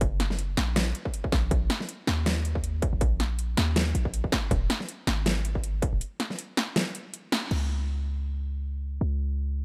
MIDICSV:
0, 0, Header, 1, 3, 480
1, 0, Start_track
1, 0, Key_signature, -6, "minor"
1, 0, Tempo, 375000
1, 14, Time_signature, 4, 2, 24, 8
1, 12349, End_track
2, 0, Start_track
2, 0, Title_t, "808-style bass"
2, 0, Program_c, 0, 38
2, 0, Note_on_c, 0, 30, 80
2, 721, Note_off_c, 0, 30, 0
2, 735, Note_on_c, 0, 34, 103
2, 1201, Note_off_c, 0, 34, 0
2, 1694, Note_on_c, 0, 34, 93
2, 1918, Note_off_c, 0, 34, 0
2, 1934, Note_on_c, 0, 34, 101
2, 2157, Note_off_c, 0, 34, 0
2, 2654, Note_on_c, 0, 39, 105
2, 3731, Note_off_c, 0, 39, 0
2, 3748, Note_on_c, 0, 34, 83
2, 4561, Note_off_c, 0, 34, 0
2, 4575, Note_on_c, 0, 39, 104
2, 5041, Note_off_c, 0, 39, 0
2, 5054, Note_on_c, 0, 34, 94
2, 5521, Note_off_c, 0, 34, 0
2, 5774, Note_on_c, 0, 27, 102
2, 5997, Note_off_c, 0, 27, 0
2, 6493, Note_on_c, 0, 32, 106
2, 7571, Note_off_c, 0, 32, 0
2, 7588, Note_on_c, 0, 27, 83
2, 7694, Note_off_c, 0, 27, 0
2, 9614, Note_on_c, 0, 37, 85
2, 11513, Note_off_c, 0, 37, 0
2, 11535, Note_on_c, 0, 37, 86
2, 12349, Note_off_c, 0, 37, 0
2, 12349, End_track
3, 0, Start_track
3, 0, Title_t, "Drums"
3, 14, Note_on_c, 9, 36, 126
3, 14, Note_on_c, 9, 42, 77
3, 142, Note_off_c, 9, 36, 0
3, 142, Note_off_c, 9, 42, 0
3, 254, Note_on_c, 9, 40, 62
3, 254, Note_on_c, 9, 42, 62
3, 382, Note_off_c, 9, 40, 0
3, 382, Note_off_c, 9, 42, 0
3, 389, Note_on_c, 9, 38, 40
3, 494, Note_on_c, 9, 42, 77
3, 517, Note_off_c, 9, 38, 0
3, 622, Note_off_c, 9, 42, 0
3, 734, Note_on_c, 9, 40, 84
3, 734, Note_on_c, 9, 42, 65
3, 862, Note_off_c, 9, 40, 0
3, 862, Note_off_c, 9, 42, 0
3, 974, Note_on_c, 9, 38, 127
3, 974, Note_on_c, 9, 42, 79
3, 1102, Note_off_c, 9, 38, 0
3, 1102, Note_off_c, 9, 42, 0
3, 1214, Note_on_c, 9, 42, 61
3, 1342, Note_off_c, 9, 42, 0
3, 1349, Note_on_c, 9, 36, 66
3, 1454, Note_on_c, 9, 42, 80
3, 1477, Note_off_c, 9, 36, 0
3, 1582, Note_off_c, 9, 42, 0
3, 1589, Note_on_c, 9, 36, 65
3, 1694, Note_off_c, 9, 36, 0
3, 1694, Note_on_c, 9, 36, 112
3, 1694, Note_on_c, 9, 40, 82
3, 1694, Note_on_c, 9, 46, 61
3, 1822, Note_off_c, 9, 36, 0
3, 1822, Note_off_c, 9, 40, 0
3, 1822, Note_off_c, 9, 46, 0
3, 1934, Note_on_c, 9, 36, 125
3, 1934, Note_on_c, 9, 42, 79
3, 2062, Note_off_c, 9, 36, 0
3, 2062, Note_off_c, 9, 42, 0
3, 2174, Note_on_c, 9, 40, 65
3, 2174, Note_on_c, 9, 42, 64
3, 2302, Note_off_c, 9, 40, 0
3, 2302, Note_off_c, 9, 42, 0
3, 2309, Note_on_c, 9, 38, 38
3, 2415, Note_on_c, 9, 42, 77
3, 2437, Note_off_c, 9, 38, 0
3, 2543, Note_off_c, 9, 42, 0
3, 2655, Note_on_c, 9, 40, 85
3, 2655, Note_on_c, 9, 42, 65
3, 2783, Note_off_c, 9, 40, 0
3, 2783, Note_off_c, 9, 42, 0
3, 2895, Note_on_c, 9, 38, 121
3, 2895, Note_on_c, 9, 42, 79
3, 3023, Note_off_c, 9, 38, 0
3, 3023, Note_off_c, 9, 42, 0
3, 3135, Note_on_c, 9, 42, 64
3, 3263, Note_off_c, 9, 42, 0
3, 3268, Note_on_c, 9, 36, 64
3, 3375, Note_on_c, 9, 42, 79
3, 3396, Note_off_c, 9, 36, 0
3, 3503, Note_off_c, 9, 42, 0
3, 3614, Note_on_c, 9, 36, 107
3, 3614, Note_on_c, 9, 42, 67
3, 3742, Note_off_c, 9, 36, 0
3, 3742, Note_off_c, 9, 42, 0
3, 3854, Note_on_c, 9, 36, 123
3, 3854, Note_on_c, 9, 42, 82
3, 3982, Note_off_c, 9, 36, 0
3, 3982, Note_off_c, 9, 42, 0
3, 4094, Note_on_c, 9, 40, 66
3, 4094, Note_on_c, 9, 42, 64
3, 4222, Note_off_c, 9, 40, 0
3, 4222, Note_off_c, 9, 42, 0
3, 4335, Note_on_c, 9, 42, 79
3, 4463, Note_off_c, 9, 42, 0
3, 4574, Note_on_c, 9, 40, 81
3, 4574, Note_on_c, 9, 42, 67
3, 4702, Note_off_c, 9, 40, 0
3, 4702, Note_off_c, 9, 42, 0
3, 4814, Note_on_c, 9, 38, 123
3, 4814, Note_on_c, 9, 42, 85
3, 4942, Note_off_c, 9, 38, 0
3, 4942, Note_off_c, 9, 42, 0
3, 5054, Note_on_c, 9, 42, 67
3, 5182, Note_off_c, 9, 42, 0
3, 5188, Note_on_c, 9, 36, 61
3, 5294, Note_on_c, 9, 42, 82
3, 5316, Note_off_c, 9, 36, 0
3, 5422, Note_off_c, 9, 42, 0
3, 5428, Note_on_c, 9, 36, 61
3, 5534, Note_off_c, 9, 36, 0
3, 5534, Note_on_c, 9, 36, 103
3, 5534, Note_on_c, 9, 40, 87
3, 5534, Note_on_c, 9, 42, 67
3, 5662, Note_off_c, 9, 36, 0
3, 5662, Note_off_c, 9, 40, 0
3, 5662, Note_off_c, 9, 42, 0
3, 5773, Note_on_c, 9, 42, 81
3, 5774, Note_on_c, 9, 36, 117
3, 5901, Note_off_c, 9, 42, 0
3, 5902, Note_off_c, 9, 36, 0
3, 6014, Note_on_c, 9, 40, 66
3, 6014, Note_on_c, 9, 42, 67
3, 6142, Note_off_c, 9, 40, 0
3, 6142, Note_off_c, 9, 42, 0
3, 6148, Note_on_c, 9, 38, 36
3, 6253, Note_on_c, 9, 42, 84
3, 6276, Note_off_c, 9, 38, 0
3, 6381, Note_off_c, 9, 42, 0
3, 6493, Note_on_c, 9, 40, 83
3, 6493, Note_on_c, 9, 42, 69
3, 6621, Note_off_c, 9, 40, 0
3, 6621, Note_off_c, 9, 42, 0
3, 6734, Note_on_c, 9, 38, 121
3, 6734, Note_on_c, 9, 42, 87
3, 6862, Note_off_c, 9, 38, 0
3, 6862, Note_off_c, 9, 42, 0
3, 6973, Note_on_c, 9, 42, 67
3, 7101, Note_off_c, 9, 42, 0
3, 7108, Note_on_c, 9, 36, 61
3, 7213, Note_on_c, 9, 42, 82
3, 7236, Note_off_c, 9, 36, 0
3, 7341, Note_off_c, 9, 42, 0
3, 7454, Note_on_c, 9, 36, 102
3, 7455, Note_on_c, 9, 42, 71
3, 7582, Note_off_c, 9, 36, 0
3, 7583, Note_off_c, 9, 42, 0
3, 7694, Note_on_c, 9, 42, 85
3, 7822, Note_off_c, 9, 42, 0
3, 7933, Note_on_c, 9, 40, 60
3, 7933, Note_on_c, 9, 42, 73
3, 8061, Note_off_c, 9, 40, 0
3, 8061, Note_off_c, 9, 42, 0
3, 8068, Note_on_c, 9, 38, 37
3, 8173, Note_on_c, 9, 42, 87
3, 8196, Note_off_c, 9, 38, 0
3, 8301, Note_off_c, 9, 42, 0
3, 8414, Note_on_c, 9, 40, 81
3, 8414, Note_on_c, 9, 42, 72
3, 8542, Note_off_c, 9, 40, 0
3, 8542, Note_off_c, 9, 42, 0
3, 8654, Note_on_c, 9, 38, 122
3, 8654, Note_on_c, 9, 42, 88
3, 8782, Note_off_c, 9, 38, 0
3, 8782, Note_off_c, 9, 42, 0
3, 8893, Note_on_c, 9, 42, 69
3, 9021, Note_off_c, 9, 42, 0
3, 9133, Note_on_c, 9, 42, 85
3, 9261, Note_off_c, 9, 42, 0
3, 9373, Note_on_c, 9, 40, 80
3, 9373, Note_on_c, 9, 46, 65
3, 9501, Note_off_c, 9, 40, 0
3, 9501, Note_off_c, 9, 46, 0
3, 9613, Note_on_c, 9, 49, 79
3, 9741, Note_off_c, 9, 49, 0
3, 12349, End_track
0, 0, End_of_file